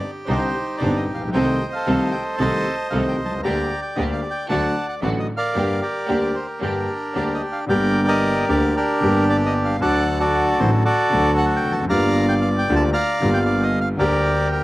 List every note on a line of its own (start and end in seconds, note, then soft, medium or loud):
0.00 0.28 G4 medium
0.00 0.11 D5 medium
0.26 0.50 C2 medium
0.26 0.50 C3 medium
0.26 0.50 D3 soft
0.26 0.50 G3 soft
0.26 0.50 C4 soft
0.26 0.49 D4 medium
0.26 0.49 D#4 medium
0.26 0.50 D#4 medium
0.26 1.30 D#4 medium
0.26 1.30 G4 medium
0.26 0.76 C5 medium
0.26 0.50 C5 medium
0.78 1.03 G1 medium
0.78 1.02 D4 medium
0.78 1.02 D#4 medium
0.78 1.02 C5 medium
0.78 0.97 D5 medium
0.82 1.04 G1 medium
0.82 1.04 G2 medium
0.82 1.03 D3 soft
0.82 1.03 G3 soft
0.82 1.04 C4 soft
0.82 1.04 D#4 medium
0.96 1.04 D#5 medium
1.07 1.33 A#1 soft
1.14 1.21 A1 soft
1.14 1.23 F5 medium
1.21 1.27 A#1 soft
1.28 1.34 B1 medium
1.33 1.56 C2 medium
1.33 1.56 C3 medium
1.33 1.56 D#3 medium
1.33 1.56 A3 medium
1.33 1.55 C4 medium
1.33 1.56 C4 medium
1.33 1.55 D#4 medium
1.33 1.56 A4 medium
1.33 1.74 C5 medium
1.33 2.35 D#5 medium
1.33 1.70 G5 medium
1.73 2.76 A4 medium
1.73 2.39 C5 medium
1.73 2.14 F5 medium
1.86 2.09 C2 medium
1.86 2.09 C3 medium
1.86 2.09 D#3 medium
1.86 2.09 A3 medium
1.86 2.08 C4 medium
1.86 2.09 C4 medium
1.86 2.08 D#4 medium
1.86 2.08 A4 medium
1.86 2.09 A4 medium
2.11 2.24 G5 medium
2.38 2.61 C2 medium
2.38 2.62 C2 medium
2.38 2.62 C3 medium
2.38 2.62 D#3 medium
2.38 2.62 A3 medium
2.38 2.61 C4 medium
2.38 2.62 C4 soft
2.38 2.61 D#4 medium
2.38 2.61 A4 medium
2.38 2.62 A4 medium
2.38 3.41 C5 medium
2.38 3.41 D#5 medium
2.38 2.87 A5 medium
2.90 3.14 C2 medium
2.90 3.14 C3 medium
2.90 3.14 D#3 medium
2.90 3.14 A3 soft
2.90 3.14 C4 medium
2.90 3.14 C4 soft
2.90 3.14 D#4 medium
2.90 3.14 A4 medium
2.90 2.98 F5 medium
3.08 3.16 G5 medium
3.18 3.44 C2 soft
3.25 3.32 B1 soft
3.25 3.34 A5 medium
3.31 3.38 C2 medium
3.38 3.45 C#2 medium
3.43 3.67 D2 medium
3.43 3.67 D3 medium
3.43 3.67 G3 medium
3.43 3.67 A#3 medium
3.43 3.67 D4 medium
3.43 3.67 G4 medium
3.43 4.46 D5 medium
3.43 3.81 G5 medium
3.43 3.81 A#5 medium
3.82 3.97 G5 medium
3.96 4.19 D2 medium
3.96 4.20 D2 medium
3.96 4.19 D3 medium
3.96 4.19 G3 medium
3.96 4.19 A#3 medium
3.96 4.19 A#3 soft
3.96 4.19 D4 medium
3.96 4.19 G4 medium
3.96 4.04 D#5 medium
4.13 4.21 F5 medium
4.31 4.48 G5 medium
4.49 4.72 D2 medium
4.49 4.72 D3 medium
4.49 4.72 F#3 medium
4.49 4.72 A3 medium
4.49 4.72 D4 medium
4.49 4.72 F#4 medium
4.49 5.01 D5 medium
4.49 4.87 F#5 medium
4.49 4.86 A5 medium
4.89 4.95 F#5 medium
5.02 5.25 A1 medium
5.02 5.25 A2 medium
5.02 5.25 D3 medium
5.02 5.25 F#3 soft
5.02 5.24 A3 medium
5.02 5.25 A3 soft
5.02 5.24 D4 medium
5.02 5.24 F#4 medium
5.02 5.25 F#4 medium
5.02 5.10 D5 medium
5.19 5.27 D#5 medium
5.37 5.81 A#4 medium
5.37 5.80 D5 medium
5.37 5.83 F5 medium
5.55 5.78 G1 medium
5.55 5.78 G2 medium
5.55 5.78 D3 medium
5.55 5.78 G3 medium
5.55 5.77 A#3 medium
5.55 5.78 A#3 medium
5.55 5.77 D4 medium
5.55 5.77 G4 medium
5.55 5.78 G4 medium
5.81 6.61 G4 soft
5.81 6.60 A#4 medium
5.81 6.36 D5 medium
6.07 6.31 D2 medium
6.07 6.31 D3 medium
6.07 6.31 G3 medium
6.07 6.30 A#3 medium
6.07 6.31 A#3 medium
6.07 6.30 D4 medium
6.07 6.30 G4 medium
6.07 6.31 G4 medium
6.34 6.46 C5 medium
6.60 6.84 G1 medium
6.60 6.84 G2 medium
6.60 6.84 D3 medium
6.60 6.84 G3 soft
6.60 6.83 A#3 medium
6.60 6.84 A#3 soft
6.60 6.83 D4 medium
6.60 7.65 D4 soft
6.60 6.83 G4 medium
6.60 6.84 G4 medium
6.60 7.65 G4 soft
6.60 7.38 A#4 medium
7.15 7.38 D2 medium
7.15 7.38 D3 medium
7.15 7.38 G3 soft
7.15 7.37 A#3 medium
7.15 7.38 A#3 soft
7.15 7.37 D4 medium
7.15 7.38 G4 medium
7.15 7.24 D5 medium
7.34 7.42 D#5 medium
7.52 7.60 F5 medium
7.66 8.44 G1 medium
7.66 8.45 G1 medium
7.66 8.45 G2 medium
7.66 8.43 D3 medium
7.66 8.44 G3 medium
7.66 8.45 A#3 medium
7.66 8.06 A#4 medium
7.66 8.48 D5 medium
7.66 8.10 G5 medium
7.71 8.45 G4 medium
8.08 8.75 G4 medium
8.08 8.75 A#4 medium
8.08 8.46 D#5 medium
8.48 8.71 D2 medium
8.48 8.71 D3 medium
8.48 8.71 G3 medium
8.48 8.71 A#3 medium
8.48 8.71 G4 medium
8.48 8.76 D5 medium
8.76 9.77 D4 medium
8.76 9.77 G4 medium
8.76 9.25 A#4 medium
9.00 9.76 G1 medium
9.00 9.77 G1 medium
9.00 9.77 G2 medium
9.00 9.76 D3 medium
9.00 9.76 G3 medium
9.00 9.77 A#3 medium
9.00 9.78 G4 medium
9.29 9.37 D5 medium
9.46 9.54 D#5 medium
9.65 9.80 F5 medium
9.79 10.55 D2 medium
9.79 9.81 D3 medium
9.79 10.55 D3 medium
9.79 10.55 F#3 medium
9.79 10.56 A3 medium
9.79 10.56 F#4 medium
9.79 10.18 A4 medium
9.79 10.19 D5 medium
9.79 10.22 F#5 medium
10.20 10.83 F#4 medium
10.20 10.84 A4 medium
10.20 10.60 D5 medium
10.59 10.81 A1 medium
10.59 10.81 A2 medium
10.59 10.81 D3 medium
10.59 10.81 F#3 medium
10.59 10.81 A3 medium
10.59 10.81 F#4 medium
10.59 10.71 C5 medium
10.85 11.85 F#4 medium
10.85 11.85 A4 medium
10.85 11.34 D5 loud
11.10 11.63 D2 loud
11.10 11.86 D2 medium
11.10 11.11 D3 medium
11.10 11.86 D3 medium
11.10 11.85 F#3 medium
11.10 11.86 A3 medium
11.14 11.87 F#4 medium
11.38 11.45 F#5 medium
11.56 11.73 G5 medium
11.64 11.90 F1 medium
11.70 11.76 E2 soft
11.70 11.80 A5 medium
11.78 11.83 F2 medium
11.83 11.89 F#2 medium
11.89 12.64 G1 medium
11.89 12.64 G2 medium
11.89 12.64 D3 medium
11.89 12.64 G3 medium
11.89 12.65 A#3 medium
11.89 12.65 F4 medium
11.89 12.90 D5 medium
11.89 12.40 F5 medium
11.89 12.26 A#5 loud
12.29 12.35 G5 medium
12.41 12.49 F5 medium
12.58 12.75 G5 medium
12.68 12.90 D2 medium
12.68 12.91 D2 medium
12.68 12.91 D3 medium
12.68 12.91 G3 medium
12.68 12.91 A#3 medium
12.68 12.91 F4 medium
12.76 12.84 A5 medium
12.93 13.44 D5 medium
12.93 13.79 F5 medium
12.93 13.30 A#5 loud
13.20 13.95 G1 medium
13.20 13.96 G1 medium
13.20 13.96 G2 medium
13.20 13.95 D3 medium
13.20 13.95 G3 medium
13.20 13.96 A#3 medium
13.24 13.97 F4 medium
13.34 13.39 G5 medium
13.45 13.64 D5 medium
13.63 13.80 D#5 medium
13.81 13.89 F5 medium
13.97 14.64 D2 medium
13.97 13.99 D3 medium
13.97 14.64 D3 medium
13.97 14.64 G3 medium
13.97 14.64 A#3 medium
13.97 14.64 G4 medium
13.97 14.51 A#4 medium
13.97 14.48 D5 medium
14.52 14.64 A#4 medium